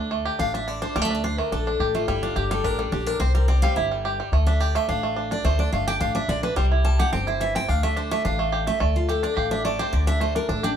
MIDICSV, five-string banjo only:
0, 0, Header, 1, 2, 480
1, 0, Start_track
1, 0, Key_signature, -1, "minor"
1, 0, Tempo, 280374
1, 1645, Time_signature, 4, 2, 24, 8
1, 18433, End_track
2, 0, Start_track
2, 0, Title_t, "Five-string banjo"
2, 0, Program_c, 0, 105
2, 0, Note_on_c, 0, 62, 53
2, 187, Note_on_c, 0, 57, 61
2, 436, Note_on_c, 0, 67, 65
2, 668, Note_off_c, 0, 62, 0
2, 668, Note_on_c, 0, 62, 64
2, 876, Note_off_c, 0, 57, 0
2, 927, Note_off_c, 0, 62, 0
2, 927, Note_on_c, 0, 62, 58
2, 1110, Note_off_c, 0, 67, 0
2, 1158, Note_on_c, 0, 50, 55
2, 1402, Note_off_c, 0, 62, 0
2, 1402, Note_on_c, 0, 62, 63
2, 1638, Note_on_c, 0, 55, 83
2, 1739, Note_off_c, 0, 55, 0
2, 1739, Note_on_c, 0, 57, 89
2, 1842, Note_off_c, 0, 50, 0
2, 1886, Note_off_c, 0, 62, 0
2, 1893, Note_on_c, 0, 62, 59
2, 2104, Note_off_c, 0, 62, 0
2, 2122, Note_off_c, 0, 57, 0
2, 2125, Note_on_c, 0, 62, 62
2, 2370, Note_on_c, 0, 57, 70
2, 2587, Note_off_c, 0, 62, 0
2, 2607, Note_on_c, 0, 62, 59
2, 2841, Note_off_c, 0, 62, 0
2, 2862, Note_on_c, 0, 62, 58
2, 3037, Note_off_c, 0, 57, 0
2, 3085, Note_on_c, 0, 67, 57
2, 3336, Note_on_c, 0, 57, 62
2, 3523, Note_off_c, 0, 62, 0
2, 3556, Note_off_c, 0, 57, 0
2, 3563, Note_on_c, 0, 55, 82
2, 3566, Note_off_c, 0, 67, 0
2, 3815, Note_on_c, 0, 62, 58
2, 4039, Note_on_c, 0, 67, 62
2, 4244, Note_off_c, 0, 55, 0
2, 4296, Note_on_c, 0, 55, 73
2, 4480, Note_off_c, 0, 62, 0
2, 4527, Note_on_c, 0, 62, 64
2, 4723, Note_off_c, 0, 67, 0
2, 4753, Note_off_c, 0, 55, 0
2, 4773, Note_on_c, 0, 55, 61
2, 4985, Note_off_c, 0, 62, 0
2, 5005, Note_on_c, 0, 62, 57
2, 5238, Note_off_c, 0, 62, 0
2, 5258, Note_on_c, 0, 62, 62
2, 5439, Note_off_c, 0, 55, 0
2, 5481, Note_on_c, 0, 60, 68
2, 5488, Note_off_c, 0, 62, 0
2, 5729, Note_on_c, 0, 55, 57
2, 5944, Note_off_c, 0, 60, 0
2, 5965, Note_on_c, 0, 60, 58
2, 6200, Note_off_c, 0, 55, 0
2, 6220, Note_on_c, 0, 55, 74
2, 6449, Note_on_c, 0, 64, 58
2, 6645, Note_off_c, 0, 60, 0
2, 6681, Note_off_c, 0, 55, 0
2, 6702, Note_on_c, 0, 55, 59
2, 6934, Note_on_c, 0, 67, 62
2, 7127, Note_off_c, 0, 64, 0
2, 7166, Note_off_c, 0, 55, 0
2, 7187, Note_on_c, 0, 55, 59
2, 7406, Note_off_c, 0, 55, 0
2, 7410, Note_off_c, 0, 67, 0
2, 7412, Note_on_c, 0, 57, 80
2, 7656, Note_on_c, 0, 62, 55
2, 7884, Note_on_c, 0, 67, 61
2, 8089, Note_off_c, 0, 57, 0
2, 8135, Note_on_c, 0, 57, 79
2, 8320, Note_off_c, 0, 62, 0
2, 8368, Note_on_c, 0, 62, 65
2, 8565, Note_off_c, 0, 67, 0
2, 8595, Note_off_c, 0, 57, 0
2, 8616, Note_on_c, 0, 57, 57
2, 8821, Note_off_c, 0, 62, 0
2, 8842, Note_on_c, 0, 62, 59
2, 9073, Note_off_c, 0, 62, 0
2, 9093, Note_on_c, 0, 62, 60
2, 9280, Note_off_c, 0, 57, 0
2, 9328, Note_on_c, 0, 57, 80
2, 9561, Note_off_c, 0, 62, 0
2, 9581, Note_on_c, 0, 62, 57
2, 9792, Note_off_c, 0, 57, 0
2, 9813, Note_on_c, 0, 57, 57
2, 10058, Note_on_c, 0, 67, 61
2, 10243, Note_off_c, 0, 62, 0
2, 10284, Note_on_c, 0, 62, 61
2, 10489, Note_off_c, 0, 57, 0
2, 10516, Note_off_c, 0, 62, 0
2, 10537, Note_on_c, 0, 62, 59
2, 10721, Note_off_c, 0, 67, 0
2, 10768, Note_on_c, 0, 50, 61
2, 10995, Note_off_c, 0, 62, 0
2, 11016, Note_on_c, 0, 62, 61
2, 11240, Note_on_c, 0, 55, 81
2, 11246, Note_off_c, 0, 50, 0
2, 11246, Note_off_c, 0, 62, 0
2, 11497, Note_on_c, 0, 64, 60
2, 11703, Note_off_c, 0, 55, 0
2, 11724, Note_on_c, 0, 55, 64
2, 11972, Note_on_c, 0, 67, 58
2, 12160, Note_off_c, 0, 64, 0
2, 12201, Note_on_c, 0, 60, 65
2, 12404, Note_off_c, 0, 55, 0
2, 12448, Note_on_c, 0, 64, 60
2, 12637, Note_off_c, 0, 67, 0
2, 12677, Note_on_c, 0, 52, 64
2, 12882, Note_off_c, 0, 60, 0
2, 12930, Note_on_c, 0, 60, 64
2, 13115, Note_off_c, 0, 64, 0
2, 13150, Note_off_c, 0, 60, 0
2, 13157, Note_on_c, 0, 62, 69
2, 13160, Note_off_c, 0, 52, 0
2, 13409, Note_on_c, 0, 57, 63
2, 13615, Note_off_c, 0, 62, 0
2, 13635, Note_on_c, 0, 62, 63
2, 13873, Note_off_c, 0, 57, 0
2, 13894, Note_on_c, 0, 57, 73
2, 14098, Note_off_c, 0, 62, 0
2, 14119, Note_on_c, 0, 62, 63
2, 14343, Note_off_c, 0, 57, 0
2, 14364, Note_on_c, 0, 57, 62
2, 14593, Note_on_c, 0, 67, 63
2, 14800, Note_off_c, 0, 62, 0
2, 14822, Note_off_c, 0, 57, 0
2, 14843, Note_on_c, 0, 57, 58
2, 15050, Note_off_c, 0, 57, 0
2, 15071, Note_on_c, 0, 57, 86
2, 15078, Note_off_c, 0, 67, 0
2, 15555, Note_on_c, 0, 67, 56
2, 15756, Note_off_c, 0, 57, 0
2, 15804, Note_on_c, 0, 62, 66
2, 16016, Note_off_c, 0, 67, 0
2, 16037, Note_on_c, 0, 67, 63
2, 16278, Note_off_c, 0, 62, 0
2, 16285, Note_on_c, 0, 62, 55
2, 16515, Note_on_c, 0, 57, 72
2, 16718, Note_off_c, 0, 67, 0
2, 16765, Note_on_c, 0, 67, 62
2, 16998, Note_on_c, 0, 50, 65
2, 17198, Note_off_c, 0, 57, 0
2, 17236, Note_off_c, 0, 62, 0
2, 17243, Note_on_c, 0, 62, 56
2, 17432, Note_off_c, 0, 67, 0
2, 17471, Note_on_c, 0, 57, 63
2, 17679, Note_off_c, 0, 50, 0
2, 17704, Note_off_c, 0, 62, 0
2, 17725, Note_on_c, 0, 62, 61
2, 17936, Note_off_c, 0, 62, 0
2, 17956, Note_on_c, 0, 62, 62
2, 18155, Note_off_c, 0, 57, 0
2, 18205, Note_on_c, 0, 67, 59
2, 18422, Note_off_c, 0, 62, 0
2, 18433, Note_off_c, 0, 67, 0
2, 18433, End_track
0, 0, End_of_file